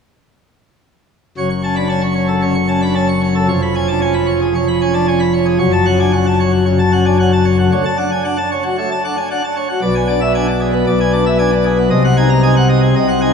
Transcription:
1.38 F#1 F#2 C#5
1.50 C#6
1.64 C#4 A5
1.76 D4 B5
1.89 C#4 A5
2.01 C#6
2.15 C#5
2.28 A4
2.42 C#3 C#5
2.55 C#6
2.68 C#4 A5
2.82 D4 B5
2.95 C#4 A5
3.09 C#6
3.22 C#5
3.35 A4
3.48 F1 F2 C#5
3.62 B5
3.75 C#4 G#5
3.88 D4 A5
4.01 C#4 G#5
4.14 B5
4.27 C#5
4.41 G#4
4.55 F1 F2 C#5
4.68 B5
4.81 C#4 G#5
4.94 D4 A5
5.08 C#4 G#5
5.20 B5
5.33 C#5
5.46 G#4
5.59 F#1 F#2 C#5
5.72 A5
5.86 C#4 F#5
5.99 D4 G#5
6.13 C#4 F#5
6.27 A5
6.39 C#5
6.52 F#4
6.66 C#3 C#5
6.79 A5
6.92 C#4 F#5
7.06 D4 G#5
7.19 C#4 F#5
7.33 A5
7.45 C#5
7.59 F#4
7.72 D2 D3 C#5
7.85 A5
7.97 D4 F#5
8.12 G#5
8.24 D4 F#5
8.38 A5
8.52 C#5
8.64 F#4
8.78 A3 C#5
8.91 A5
9.05 D4 F#5
9.17 G#5
9.30 D4 F#5
9.44 A5
9.57 C#5
9.69 F#4
9.82 B1 B2 D5
9.95 G#5
10.08 D4 D5
10.21 E5
10.35 D4 G#5
10.48 D5
10.61 G#4
10.73 B3
10.87 B1 B2 D5
11.00 G#5
11.13 D4 D5
11.26 E5
11.39 D4 G#5
11.53 D5
11.65 G#4
11.78 B3
11.90 C2 C3 D#5
12.04 F#5
12.17 D#4 G#5
12.30 A#5
12.43 D#4 G#5
12.56 F#5
12.69 D#5
12.83 G#4
12.96 C2 C3 D#5
13.08 F#5
13.21 D#4 G#5

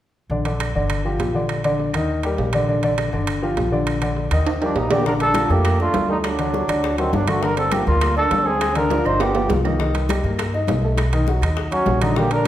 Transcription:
0.30 A#1 D3 D4 D5
0.45 D3 D4 D5, high timbale
0.60 high timbale, low timbale, claves
0.75 G1 D3 D4 D5
0.90 high timbale, claves
1.05 F3 F4 G4
1.19 A#1, high timbale, low timbale
1.34 D3 D4 D5
1.49 high timbale, claves
1.64 D3 D4 D5, high timbale
1.79 low timbale
1.93 D#2 D#3 D#4 D#5, high timbale, claves
2.23 G3 G4 A#4, high timbale
2.38 A#1, low timbale
2.53 D3 D4 D5, high timbale, claves
2.68 D3 D4 D5
2.83 D3 D4 D5, high timbale
2.98 high timbale, low timbale, claves
3.12 G1 D3 D4 D5
3.27 high timbale, claves
3.42 F3 F4 G4
3.57 A#1, high timbale, low timbale
3.72 D3 D4 D5
3.87 high timbale, claves
4.02 D3 D4 D5, high timbale
4.16 low timbale
4.31 D#2 D#3 D#4 D#5, high timbale, claves
4.46 high timbale
4.61 F3 G3 D4 G4 A#4, high timbale
4.75 A#1 G3 D#4, low timbale
4.91 D3 A#3 D4 G4 D5, low timbale, claves
5.05 D3 D4 A#4, high bongo, high conga
5.20 D4 A4, high bongo, high conga, high timbale
5.34 F3 F4, high bongo, high conga, high timbale, low timbale, claves
5.49 F2 A3 A#3 G4 A4, high bongo, high conga
5.64 high bongo, high conga, high timbale, claves
5.79 A3 D4 F4 D5, high bongo, high conga
5.94 D2, high bongo, low bongo, high conga, high timbale, low timbale
6.08 G3 A3 D#4 A4, high conga
6.24 F#3 D4, high bongo, high conga, high timbale, claves
6.39 D3 D4, high bongo, high conga, high timbale
6.53 F#3 F#4, high bongo, high conga, low timbale
6.68 D2 D4 D5, high bongo, high timbale, claves
6.83 high bongo, high conga
6.98 D#3 F#3 C4 F#4, high bongo, high conga, high timbale
7.13 G1 F#3 D4, high bongo, low bongo, high conga, low timbale
7.27 D3 A3 D4 F#4, high timbale, claves
7.43 D3 D4 A#4, high bongo, high conga
7.57 C4 A4, high bongo, high conga, high timbale
7.72 F3 A#3 F4 G4, high bongo, high conga, high timbale, low timbale, claves
7.87 D2 G3 A#3 F4 G4, high bongo, high conga
8.01 high bongo, high conga, high timbale, claves
8.16 D4 A4 D5, high bongo, high conga
8.31 D2, high bongo, low bongo, high conga, high timbale, low timbale
8.45 G#3 C4 G#4, high conga
8.61 high bongo, high conga, high timbale, claves
8.75 D3 D4 A#4, high bongo, high conga, high timbale
8.90 F3 F4, high bongo, high conga, high timbale
9.05 G1 D4 D#4 C5 D5, high bongo, claves
9.20 B3 G4, high bongo, high conga, low timbale
9.35 F3 F4, high bongo, high conga, low timbale
9.49 C2, high bongo, low bongo, high conga, low timbale
9.65 D#3 D#4, high conga, low timbale, claves
9.79 D#3 D#4, high bongo, high conga
9.94 high bongo, high conga, high timbale
10.09 G3 G4, high bongo, high conga, high timbale, low timbale, claves
10.24 G2 A#3 A#4, high bongo, high conga
10.38 high bongo, high conga, high timbale, claves
10.53 D#4 D#5, high bongo, high conga
10.67 B1, high bongo, low bongo, high conga, high timbale, low timbale
10.83 A3 A4, high conga
10.97 high bongo, high conga, high timbale, claves
11.13 D#3 D#4, high bongo, high conga, high timbale
11.27 F#3 F#4, high bongo, high conga, low timbale
11.41 D#2 D#4 D#5, high bongo, high timbale, claves
11.57 high bongo, high conga
11.71 F#3 C#4 F#4, high bongo, high conga, high timbale
11.86 A#1, high bongo, low bongo, high conga, low timbale
12.01 D3 F#3 D4 D#4, high timbale, claves
12.16 D3 A#3 D4 G4, high bongo, high conga
12.31 D4 A#4, high bongo, high conga, high timbale

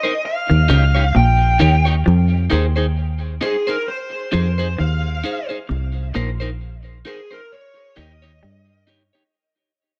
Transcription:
Already playing: D#5
0.03 D#4 A#4 C5
0.26 F5
0.50 D#2 D#3
0.69 C#2 C#3 D#4 G4 C#5
0.95 D#4 G4 C#5
1.15 A#1 A#2 G5
1.59 D#2 D#3 D#4 G4 C#5
1.85 D#4 G4 C#5
2.06 F2 F3
2.50 D#2 D#3 D#4 G#4 C5
2.76 D#4 G#4 C5
3.41 D#4 G#4 C5
3.67 D#4 G#4 A#4 C5
3.88 C5
4.32 F2 F3 D#4 G#4 C5
4.58 D#4 G#4 C5
4.78 D#2 D#3 F5
5.24 D#4 G#4 C5
5.49 D#4 G#4 C5
5.69 C2 C3
6.14 A#1 A#2 D#4 A#4 C5
6.40 D#4 A#4 C5
7.05 D#4 G#4 A#4 C5
7.31 D#4 A#4 C5
7.52 C#5
7.96 D#2 D#3 D#4 G4 C#5 D#5
8.22 D#4 G4 C#5
8.43 G2 G3
8.87 D#4 G4 C#5
9.13 D#4 G4 C#5

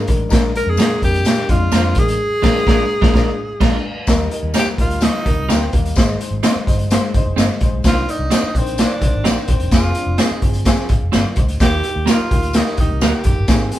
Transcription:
0.07 A1 G#3 D4 A#4, kick, closed hi-hat, high conga
0.29 A#1 G#3 D4 A#4, kick, snare, closed hi-hat, tambourine
0.54 G#3 D4 A#4, closed hi-hat, muted conga
0.66 F2 G#4
0.77 A#2 G#3 D4 F4 A#4, snare, closed hi-hat, tambourine, high conga
1.01 F2 G#3 D4 G4 A#4, kick, closed hi-hat, low conga
1.14 closed hi-hat
1.24 A#2 G#3 D4 A#4, snare, closed hi-hat, tambourine, muted conga
1.38 snare
1.49 F2 G#3 D4 F4, kick, closed hi-hat, low conga
1.72 F2 G#3 D4 F4 A#4 C5, snare, closed hi-hat, tambourine, high conga
1.95 A1 G#3 D4 A#4, kick, closed hi-hat, high conga
1.99 G#4
2.08 closed hi-hat
2.42 A#1 G#3 D4 F4 A#4, kick, snare, crash
2.66 A#1 G#3 D4 F4 A#4, kick, snare
3.01 A#1 G#3 D4 F4 A#4, kick, snare
3.13 A#1 G#3 D4 F4 A#4, kick, snare
3.60 A#1 G#3 D4 F4 A#4, kick, snare, crash
4.07 D#2 G3 D#4 A#4, kick, snare, closed hi-hat, tambourine, muted conga
4.31 G3 D#4 A#4, closed hi-hat, muted conga
4.43 D#2
4.54 G3 A#3 D#4 G4 A#4 C5, snare, closed hi-hat, tambourine, high conga
4.59 G4
4.66 muted fingered electric bass stroke
4.78 D2 G3 D#4 F4 A#4, kick, closed hi-hat
4.90 closed hi-hat
5.00 G3 D#4 F4, snare, closed hi-hat, tambourine, muted conga
5.15 snare
5.25 D#2 G3 D#4 A#4, kick, closed hi-hat, low conga
5.38 C2
5.48 D2 G3 A#3 C4 D#4 G4 A#4, snare, closed hi-hat, tambourine, high conga
5.72 D#2 G3 A#3 D#4 A#4, kick, closed hi-hat, high conga
5.85 closed hi-hat
5.96 G#1 G#3 D#4 C5, kick, snare, closed hi-hat, tambourine, muted conga
6.21 G#3 D#4 C5, closed hi-hat, muted conga
6.31 G#1
6.43 G#3 C4 D#4 G#4 C5, snare, closed hi-hat, tambourine, high conga
6.55 muted fingered electric bass stroke
6.67 G1 G#3 D#4 C5, kick, closed hi-hat
6.79 closed hi-hat
6.91 G#3 D#4 C5, snare, closed hi-hat, tambourine, muted conga
7.14 G#1 G#3 D#4 C5, kick, closed hi-hat, low conga
7.26 F1
7.36 G1 G#3 C4 D#4 G#4 C5, snare, closed hi-hat, tambourine, high conga
7.61 A#1 G#3 D#4 C5, kick, closed hi-hat, high conga
7.73 B1
7.84 C2 D#3 D4 F4 C5, kick, snare, closed hi-hat, tambourine, muted conga
8.08 D#3 D4 D#4 D5, closed hi-hat
8.19 C2
8.30 D#3 C4 D4 D#4 G4 C5 D5, snare, closed hi-hat, tambourine, high conga
8.43 muted fingered electric bass stroke
8.55 A#1 D#3 C4 D4 C5, kick, closed hi-hat
8.66 closed hi-hat
8.78 D#3 D4 C5, snare, closed hi-hat, tambourine, muted conga
9.01 C2 D#3 D4, kick, closed hi-hat, low conga
9.05 C5
9.15 G#1
9.24 A#1 D#3 C4 D4 D#4 G4 D5, snare, closed hi-hat, tambourine, high conga
9.28 C4 C5
9.48 D#1 D#3 D4 C5, kick, closed hi-hat, high conga
9.60 E1, closed hi-hat
9.71 F1 F3 C4 F4 G#4, kick, snare, closed hi-hat, tambourine, muted conga
9.95 F3 C4 D4, closed hi-hat
10.06 F1
10.18 F3 C4 D#4 F4 G#4 C5, snare, closed hi-hat, tambourine, high conga
10.31 muted fingered electric bass stroke
10.42 G1 F3 C4 G#4, kick, closed hi-hat, low conga
10.53 closed hi-hat
10.65 F3 C4 G#4, kick, snare, closed hi-hat, tambourine, muted conga
10.78 snare
10.89 G#1 G#4 F5, kick, closed hi-hat, low conga
11.02 F1
11.12 G1 C4 F4 G#4 C5 D5, snare, closed hi-hat, tambourine, high conga
11.26 high conga
11.36 C#2 D#4 C5, kick, closed hi-hat, high conga
11.48 D2, closed hi-hat
11.60 D#2 D#3 A#3 G4, kick, snare, closed hi-hat, tambourine, muted conga
11.83 D#3 A#3 G4, closed hi-hat, muted conga
11.96 D#2
12.06 D#3 A#3 D#4 G4 A#4, snare, closed hi-hat, tambourine, high conga
12.10 F4 G4
12.20 muted fingered electric bass stroke
12.30 D2 D#3 A#3 G4, kick, closed hi-hat
12.42 closed hi-hat
12.53 D#3 A#3 D#4 G4, snare, closed hi-hat, tambourine, muted conga
12.66 snare
12.78 D#2 D#3 A#3 D#4 G4, kick, closed hi-hat, low conga
12.90 C2
13.01 D2 D#3 A#3 D#4 G4 A#4, snare, closed hi-hat, tambourine, high conga
13.24 F#1 D#3 A#3 G4, kick, closed hi-hat, high conga
13.38 G1
13.48 D#3 C4 G#4, kick, snare, closed hi-hat, tambourine, muted conga
13.72 D#3 C4 G#4, closed hi-hat

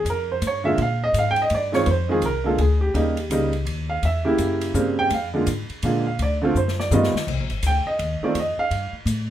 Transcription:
0.05 F2, hi-hat pedal, ride
0.10 A#4
0.32 C5
0.42 G2, hi-hat pedal, ride
0.47 C#5
0.64 D3 G#3 A#3 F4 E5
0.78 A#2, ride
0.82 F5
1.04 D#5
1.14 G#2, hi-hat pedal, ride
1.19 F5
1.31 G5
1.36 ride
1.42 D#5
1.50 G2, ride
1.55 D5
1.72 D#3 G#3 C4 F4 C#5, snare
1.86 F2 B4, ride
1.91 C5
2.09 D#3 G#3 C4 F4 G#4
2.22 C2 A#4, hi-hat pedal, ride
2.44 D3 G#3 A#3 F4 A4
2.58 D2 G#4, ride
2.81 G4
2.94 D#2 C#3 G3 A#3 D#4, ride
3.17 ride
3.30 C#2 C#3 G3 A#3 D#4, hi-hat pedal, ride
3.53 ride
3.65 D#2, ride
3.90 F5
4.03 E2 E5, ride
4.25 C#3 A#3 E4 G4
4.38 F#2, hi-hat pedal, ride
4.61 ride
4.74 G2 C#3 G3 A#3 C4, hi-hat pedal
4.99 G5
5.10 F2 F5, ride
5.34 D3 G#3 A#3 F4
5.47 G#2, hi-hat pedal, ride
5.70 muted upright bass stroke, ride
5.82 A#2 D3 G#3 A#3 F4, ride
6.06 F5
6.19 D2 D5, ride
6.42 D3 A3 C4 F4
6.55 F#2 C5, hi-hat pedal
6.68 snare
6.80 D5, snare
6.91 G2 D#3 G3 B3 F4 D#5, hi-hat pedal, mid tom
7.03 snare
7.14 muted upright bass stroke, snare
7.27 C2, kick, crash
7.40 A#1
7.50 G1, ride
7.63 D2, hi-hat pedal, ride
7.67 G5
7.86 D#5, muted upright bass stroke
7.99 D#2, ride
8.21 D#3 A3 C4 F4 D5, muted upright bass stroke
8.35 F2, ride
8.39 D#5
8.57 F5, muted upright bass stroke
8.71 G2, ride
8.93 muted upright bass stroke
9.06 A2, hi-hat pedal, ride

